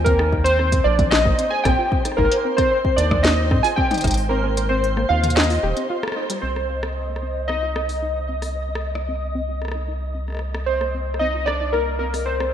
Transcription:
Already playing: D#2 C5
0.04 C4 A#4, kick, closed hi-hat
0.19 D#4, cross-stick
0.33 D#4, kick
0.44 C5, closed hi-hat
0.59 C4, cross-stick
0.72 C4, kick, closed hi-hat
0.84 A#1 C5 D5
0.99 C4, kick, closed hi-hat, mid tom
1.11 D#5, cross-stick, snare
1.25 A#3, kick
1.39 C4, closed hi-hat
1.50 G#5
1.64 A#1 C4 G5, kick, cross-stick, closed hi-hat
1.79 F4
1.92 C4, kick
2.05 D#4, cross-stick, closed hi-hat
2.12 cross-stick
2.17 G#1 D#4 A#4, kick, cross-stick
2.25 cross-stick
2.32 closed hi-hat
2.45 C4
2.57 C4 C5, kick, cross-stick, closed hi-hat
2.72 C5
2.85 C4, kick
2.96 D#2 D5, closed hi-hat
3.11 A#3, kick, cross-stick, mid tom
3.23 C4 D#5, snare, closed hi-hat
3.51 G#2 C4, kick, cross-stick
3.63 F4 G#5, open hi-hat
3.76 C4 G5, kick
3.91 D#4, closed hi-hat, mid tom
3.94 closed hi-hat
3.98 closed hi-hat
4.01 G#1, cross-stick, closed hi-hat
4.04 D#4, kick, closed hi-hat
4.07 closed hi-hat
4.11 closed hi-hat
4.14 closed hi-hat, open hi-hat
4.29 C4 A#4
4.44 C4
4.57 C5, closed hi-hat
4.69 C4 C5
4.84 closed hi-hat
4.97 A#3, cross-stick
5.09 D#2 C4 F5
5.24 closed hi-hat, mid tom
5.30 closed hi-hat
5.35 C4 D#5, snare, closed hi-hat
5.43 closed hi-hat
5.50 F4, open hi-hat
5.63 D#1 G4
5.77 C4, closed hi-hat
5.90 F4
6.03 cross-stick
6.08 cross-stick
6.12 cross-stick
6.17 D#4
6.30 G3, closed hi-hat
6.42 C2 C4 C5 D#5
6.56 C4, cross-stick
6.70 C5
6.83 C4, cross-stick
7.09 A#3
7.16 cross-stick
7.23 C4
7.48 C4 D#5, cross-stick
7.63 F4
7.76 C4, cross-stick
7.89 D#4, open hi-hat
8.02 D#4
8.29 C4
8.42 C4, cross-stick, open hi-hat
8.55 C5
8.69 C4
8.75 cross-stick
8.95 A#3, cross-stick
9.09 C4
9.35 C4
9.48 F4
9.62 C4, cross-stick
9.65 cross-stick
9.68 cross-stick
9.72 D#4, cross-stick
9.88 D#4
10.15 C4
10.28 C4, cross-stick
10.30 cross-stick
10.32 cross-stick
10.35 cross-stick
10.37 cross-stick
10.39 C5, cross-stick
10.54 C4, cross-stick
10.66 C5
10.81 A#3, cross-stick
10.94 C4
11.14 cross-stick
11.19 C4 D#5
11.34 F4
11.46 C4 D5, cross-stick
11.61 D#4
11.73 D#4 A#4, cross-stick
11.99 C4 A#4
12.14 C4, cross-stick, open hi-hat
12.26 C5
12.40 C4, cross-stick

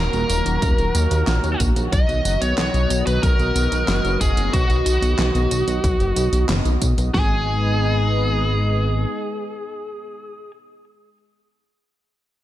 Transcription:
Already playing: D#3 F#3 A#3 F#4 A#4 A#5
0.13 D#1, closed hi-hat, tambourine
0.30 D#1, closed hi-hat, tambourine
0.46 D#1, closed hi-hat, tambourine
0.62 D#1, kick, closed hi-hat, tambourine
0.78 D#1, closed hi-hat, tambourine
0.95 D#2, closed hi-hat, tambourine
1.11 D#2, closed hi-hat, tambourine
1.27 A#1, snare, clap, closed hi-hat, tambourine
1.44 D#2, closed hi-hat, tambourine
1.60 A#1, kick, closed hi-hat, tambourine
1.76 A#1, closed hi-hat, tambourine
1.93 B1 B3 D#5, kick, closed hi-hat, tambourine
2.09 B1, closed hi-hat, tambourine
2.25 F#1, closed hi-hat, tambourine
2.42 B1 C#5, closed hi-hat, tambourine
2.58 B1, snare, clap, closed hi-hat, tambourine
2.74 B1, closed hi-hat, tambourine
2.90 B1, closed hi-hat, tambourine
3.07 B1 B4, closed hi-hat, tambourine
3.23 B1 A#4, kick, closed hi-hat, tambourine
3.39 B1, closed hi-hat, tambourine
3.56 B1, closed hi-hat, tambourine
3.72 B1, closed hi-hat, tambourine
3.88 F#1, snare, clap, closed hi-hat, tambourine
4.05 F#1, closed hi-hat, tambourine
4.21 F#1 G#4, kick, closed hi-hat, tambourine
4.37 F#1, closed hi-hat, tambourine
4.53 B1 F#4, kick, closed hi-hat, tambourine
4.70 B1, closed hi-hat, tambourine
4.86 B1, closed hi-hat, tambourine
5.02 B1, closed hi-hat, tambourine
5.19 B1, snare, clap, closed hi-hat, tambourine
5.35 B1, closed hi-hat, tambourine
5.51 B1, closed hi-hat, tambourine
5.68 B1, closed hi-hat, tambourine
5.84 B1, kick, closed hi-hat, tambourine
6.00 F#1, closed hi-hat, tambourine
6.16 B1, closed hi-hat, tambourine
6.33 B1, closed hi-hat, tambourine
6.49 F#1, snare, clap, closed hi-hat, tambourine
6.65 B1, closed hi-hat, tambourine
6.82 B1, kick, closed hi-hat, tambourine
6.98 B1, closed hi-hat, tambourine
7.14 G#1 G#3 B3 D#4 G#4 B4 D#5, kick, snare

